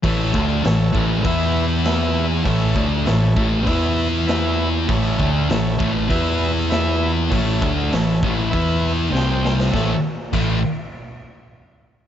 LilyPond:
<<
  \new Staff \with { instrumentName = "Transistor combo organ" } { \time 4/4 \key a \major \tempo 4 = 99 <a' cis'' e''>8 r8 <a' cis'' e''>8 r8 <e' b' e''>8 r8 <e' b' e''>8 r8 | <e' a' cis''>8 r8 <e' a' cis''>8 r8 <e' b' e''>8 r8 <e' b' e''>8 r8 | <e' a' cis''>8 r8 <e' a' cis''>8 r8 <e' b' e''>8 r8 <e' b' e''>8 r8 | <e' a' cis''>8 r8 <e' a' cis''>8 r8 <e' b' e''>8 r8 <g' c'' g''>8 r8 |
<a' cis'' e''>8 r2. r8 | }
  \new Staff \with { instrumentName = "Distorted electric guitar" } { \clef bass \time 4/4 \key a \major <a, e a>8 <d a d'>8 <a, e>8 <a, e a>8 <e b e'>2 | <a, e a>8 <d a d'>8 <a, e>8 <a, e a>8 <e b e'>2 | <a, e a>8 <d a d'>8 <a, e>8 <a, e a>8 <e b e'>2 | <a, e a>8 <d a d'>8 <a, e>8 <a, e a>8 <e b e'>4 <c g c'>4 |
<a, e a>8 r8 <a, e a>8 r2 r8 | }
  \new Staff \with { instrumentName = "Fingered electric bass" } { \clef bass \time 4/4 \key a \major a,,8 d,8 a,,8 a,,8 e,2 | a,,8 d,8 a,,8 a,,8 e,2 | a,,8 d,8 a,,8 a,,8 e,2 | a,,8 d,8 a,,8 a,,8 e,4 c,4 |
a,,8 r8 a,,8 r2 r8 | }
  \new DrumStaff \with { instrumentName = "Drums" } \drummode { \time 4/4 <hho bd>8 bd8 <hho sn>8 bd8 <hho bd>4 <hho sn>4 | <hho bd>8 bd8 <hho sn>8 bd8 <hho bd>4 <hho sn>4 | <hho bd>8 bd8 <hho sn>8 bd8 <hho bd>4 <hho sn>4 | <hho bd>8 bd8 <hho sn>8 bd8 <hho bd>4 sn8 sn16 sn16 |
<bd sn>4 <cymc bd>4 r4 r4 | }
>>